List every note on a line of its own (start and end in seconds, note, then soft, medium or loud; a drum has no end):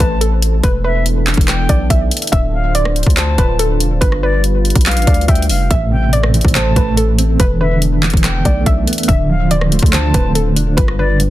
0.00 0.61 A1 loud
0.00 0.62 A3 medium
0.00 2.29 A4 medium
0.00 0.16 B4 medium
0.00 0.62 C5 medium
0.00 0.62 E5 medium
0.00 0.19 A5 medium
0.00 kick medium
0.00 closed hi-hat medium
0.21 0.37 A4 medium
0.21 closed hi-hat medium
0.42 closed hi-hat medium
0.63 1.35 E1 loud
0.63 2.31 E3 medium
0.63 2.31 B3 medium
0.63 5.67 D4 medium
0.63 0.79 B4 loud
0.63 kick loud
0.63 closed hi-hat medium
0.84 1.44 B4 medium
0.84 1.05 E5 medium
1.06 closed hi-hat medium
1.27 clap medium
1.27 closed hi-hat soft
1.34 1.68 E1 loud
1.34 kick loud
1.34 closed hi-hat medium
1.41 closed hi-hat medium
1.48 1.88 G5 medium
1.48 cross-stick medium
1.48 clap loud
1.48 closed hi-hat medium
1.69 1.89 B1 loud
1.69 1.85 D5 medium
1.69 kick medium
1.69 closed hi-hat medium
1.90 2.11 B1 loud
1.90 2.06 E5 medium
1.90 kick loud
1.90 closed hi-hat medium
2.11 closed hi-hat medium
2.17 closed hi-hat medium
2.22 closed hi-hat medium
2.27 closed hi-hat medium
2.32 3.04 D1 loud
2.32 4.00 D3 medium
2.32 5.67 F4 medium
2.32 4.00 C5 medium
2.32 2.72 E5 loud
2.32 kick loud
2.32 closed hi-hat medium
2.54 2.74 F5 medium
2.75 3.15 D5 loud
2.75 closed hi-hat medium
2.85 cross-stick loud
2.96 closed hi-hat medium
3.03 3.37 D2 loud
3.03 kick loud
3.03 closed hi-hat medium
3.10 closed hi-hat medium
3.17 3.33 C5 medium
3.17 3.57 A5 medium
3.17 clap loud
3.17 closed hi-hat medium
3.38 3.82 D1 loud
3.38 3.54 B4 medium
3.38 kick medium
3.38 closed hi-hat medium
3.59 3.75 A4 medium
3.59 closed hi-hat medium
3.80 3.93 E1 loud
3.80 closed hi-hat medium
3.91 4.01 D1 loud
4.01 4.73 G1 loud
4.01 5.69 G3 medium
4.01 4.17 B4 loud
4.01 5.69 B4 medium
4.01 kick loud
4.01 closed hi-hat medium
4.12 cross-stick medium
4.23 4.83 B4 medium
4.23 4.43 D5 medium
4.44 closed hi-hat medium
4.65 closed hi-hat soft
4.70 closed hi-hat medium
4.75 4.98 B1 loud
4.75 kick loud
4.75 closed hi-hat medium
4.81 closed hi-hat medium
4.86 5.26 F5 loud
4.86 clap loud
4.86 closed hi-hat medium
4.91 closed hi-hat medium
4.97 5.07 A1 loud
4.97 closed hi-hat medium
5.02 closed hi-hat soft
5.07 5.28 D2 loud
5.07 5.23 D5 medium
5.07 kick medium
5.07 closed hi-hat medium
5.14 closed hi-hat medium
5.21 closed hi-hat soft
5.28 5.51 D2 loud
5.28 5.44 E5 medium
5.28 5.48 G5 medium
5.28 kick loud
5.28 closed hi-hat medium
5.35 closed hi-hat medium
5.42 closed hi-hat medium
5.49 5.70 F1 loud
5.49 5.70 F5 medium
5.49 open hi-hat loud
5.70 6.42 A1 loud
5.70 6.12 A2 medium
5.70 7.38 A3 medium
5.70 9.05 A4 medium
5.70 7.38 C5 medium
5.70 6.10 E5 loud
5.70 7.38 E5 medium
5.70 kick loud
5.70 closed hi-hat medium
5.92 6.97 C3 medium
5.92 6.12 G5 medium
6.13 6.54 A2 medium
6.13 6.53 D5 loud
6.13 closed hi-hat medium
6.23 cross-stick loud
6.34 7.40 E3 medium
6.34 closed hi-hat medium
6.41 6.75 A1 loud
6.41 kick medium
6.41 closed hi-hat medium
6.48 closed hi-hat medium
6.55 7.39 A2 medium
6.55 6.71 C5 medium
6.55 6.95 A5 medium
6.55 clap loud
6.55 closed hi-hat medium
6.76 7.37 A1 loud
6.76 7.40 A3 medium
6.76 6.92 B4 medium
6.76 kick medium
6.76 closed hi-hat medium
6.97 7.13 A4 medium
6.97 closed hi-hat medium
7.18 7.40 C4 medium
7.18 closed hi-hat medium
7.40 8.11 E1 loud
7.40 7.81 E2 medium
7.40 9.07 E3 medium
7.40 9.07 B3 medium
7.40 10.74 D4 medium
7.40 7.56 B4 loud
7.40 kick loud
7.40 closed hi-hat medium
7.61 8.66 D3 medium
7.61 8.20 B4 medium
7.61 7.81 E5 medium
7.82 8.23 E2 medium
7.82 closed hi-hat medium
8.03 9.09 E3 medium
8.03 clap medium
8.03 closed hi-hat soft
8.10 8.44 E1 loud
8.10 kick medium
8.10 closed hi-hat medium
8.17 closed hi-hat medium
8.24 9.09 E2 loud
8.24 8.64 G5 medium
8.24 cross-stick medium
8.24 clap loud
8.24 closed hi-hat medium
8.45 8.66 B1 loud
8.45 9.09 A3 medium
8.45 8.61 D5 medium
8.45 kick medium
8.45 closed hi-hat medium
8.66 8.87 B1 loud
8.66 8.82 E5 medium
8.66 kick loud
8.66 closed hi-hat medium
8.87 9.09 B3 loud
8.87 closed hi-hat medium
8.93 closed hi-hat medium
8.98 closed hi-hat medium
9.03 closed hi-hat medium
9.08 9.80 D1 loud
9.08 9.50 D3 loud
9.08 10.76 D3 medium
9.08 11.30 F4 medium
9.08 10.76 C5 medium
9.08 9.48 E5 loud
9.08 kick loud
9.08 closed hi-hat medium
9.29 10.35 F3 medium
9.29 9.50 F5 medium
9.51 9.92 D3 medium
9.51 9.91 D5 loud
9.51 closed hi-hat medium
9.61 cross-stick medium
9.72 10.78 A3 medium
9.72 closed hi-hat medium
9.79 10.13 D2 loud
9.79 kick loud
9.79 closed hi-hat medium
9.86 closed hi-hat medium
9.93 10.78 D3 loud
9.93 10.09 C5 medium
9.93 10.33 A5 medium
9.93 clap loud
9.93 closed hi-hat medium
10.14 10.58 D1 loud
10.14 10.56 C4 medium
10.14 10.30 B4 medium
10.14 kick medium
10.14 closed hi-hat medium
10.35 10.51 A4 medium
10.35 closed hi-hat medium
10.56 10.69 E1 loud
10.56 10.77 D4 medium
10.56 closed hi-hat medium
10.67 10.77 D1 loud
10.77 11.30 G1 loud
10.77 11.19 G2 medium
10.77 11.30 G3 medium
10.77 11.30 D4 medium
10.77 10.93 B4 loud
10.77 11.30 B4 medium
10.77 kick loud
10.77 closed hi-hat medium
10.88 cross-stick medium
10.99 11.30 D3 medium
10.99 11.30 B4 medium
10.99 11.19 D5 medium
11.20 11.30 G2 medium
11.20 closed hi-hat medium